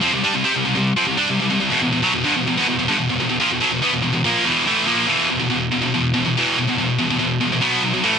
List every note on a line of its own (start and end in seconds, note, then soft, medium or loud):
0.02 0.11 F3 medium
0.02 0.12 C4 loud
0.13 0.23 C3 medium
0.13 0.23 G3 medium
0.24 0.33 G3 loud
0.24 0.33 D4 loud
0.34 0.44 C3 medium
0.34 0.44 G3 medium
0.44 0.54 C4 loud
0.44 0.54 G4 loud
0.54 0.64 C3 medium
0.54 0.64 G3 medium
0.65 0.74 C3 medium
0.65 0.75 G3 medium
0.75 0.92 C3 medium
0.75 0.92 G3 medium
0.96 1.06 F3 medium
0.96 1.07 C4 loud
1.07 1.18 C3 medium
1.07 1.16 G3 medium
1.17 1.27 G3 medium
1.17 1.28 D4 loud
1.28 1.38 C3 medium
1.28 1.39 G3 medium
1.40 1.49 C3 medium
1.40 1.50 G3 medium
1.50 1.59 C3 medium
1.50 1.59 G3 medium
1.60 1.70 C3 medium
1.60 1.71 G3 medium
1.70 1.80 E2 medium
1.70 1.81 B2 loud
1.82 1.91 E2 medium
1.82 1.92 B2 medium
1.92 2.03 E2 medium
1.92 2.01 B2 medium
2.02 2.12 B2 medium
2.02 2.13 F#3 loud
2.13 2.23 E2 medium
2.13 2.24 B2 medium
2.24 2.33 G2 medium
2.24 2.34 D3 medium
2.36 2.46 E2 medium
2.36 2.46 B2 medium
2.47 2.56 E2 medium
2.47 2.56 B2 medium
2.57 2.66 E2 medium
2.57 2.66 B2 loud
2.67 2.77 E2 medium
2.67 2.78 B2 medium
2.79 2.88 E2 medium
2.79 2.88 B2 medium
2.88 2.97 G2 loud
2.88 2.98 D3 medium
2.99 3.08 E2 medium
2.99 3.09 B2 medium
3.09 3.19 E2 medium
3.09 3.19 B2 medium
3.20 3.28 E2 medium
3.20 3.28 B2 medium
3.29 3.40 E2 medium
3.29 3.39 B2 medium
3.40 3.50 A#2 medium
3.40 3.50 F3 loud
3.51 3.61 E2 medium
3.51 3.59 B2 medium
3.60 3.71 B2 loud
3.60 3.71 F#3 loud
3.71 3.82 E2 medium
3.71 3.81 B2 medium
3.82 3.92 E3 loud
3.82 3.92 B3 loud
3.92 4.01 E2 medium
3.92 4.02 B2 medium
4.02 4.11 E2 medium
4.02 4.12 B2 medium
4.13 4.24 E2 medium
4.13 4.24 B2 medium
4.24 4.45 A#2 medium
4.24 4.45 F3 loud
4.24 4.45 A#3 loud
4.45 4.66 E2 medium
4.45 4.66 B2 medium
4.45 4.66 E3 loud
4.66 4.86 A2 loud
4.66 4.87 E3 loud
4.66 4.87 A3 loud
4.86 5.07 A#2 loud
4.86 5.08 F3 loud
4.86 5.08 A#3 loud
5.07 5.28 E2 medium
5.07 5.28 B2 medium
5.07 5.29 E3 loud
5.29 5.39 E2 medium
5.29 5.39 B2 medium
5.40 5.49 E2 medium
5.40 5.49 B2 medium
5.50 5.70 E2 medium
5.50 5.70 B2 medium
5.72 5.81 E2 medium
5.72 5.80 B2 medium
5.82 5.93 E2 medium
5.82 5.93 B2 medium
5.94 6.13 E2 medium
5.94 6.12 B2 medium
6.14 6.24 E2 medium
6.14 6.24 B2 medium
6.25 6.36 E2 medium
6.25 6.36 B2 medium
6.37 6.57 E2 medium
6.37 6.56 B2 medium
6.37 6.57 E3 medium
6.57 6.67 E2 medium
6.57 6.66 B2 medium
6.68 6.77 E2 medium
6.68 6.77 B2 medium
6.78 6.98 E2 medium
6.78 6.97 B2 medium
6.98 7.10 E2 medium
6.98 7.09 B2 medium
7.10 7.18 E2 medium
7.10 7.19 B2 medium
7.19 7.39 E2 medium
7.19 7.40 B2 medium
7.41 7.51 E2 medium
7.41 7.51 B2 medium
7.52 7.63 E2 medium
7.52 7.60 B2 medium
7.61 7.82 B2 medium
7.61 7.82 F#3 loud
7.61 7.83 B3 loud
7.83 7.93 B2 medium
7.83 7.93 F#3 medium
7.94 8.03 B2 medium
7.94 8.04 F#3 medium
8.03 8.19 A2 medium
8.03 8.19 E3 loud
8.03 8.19 A3 loud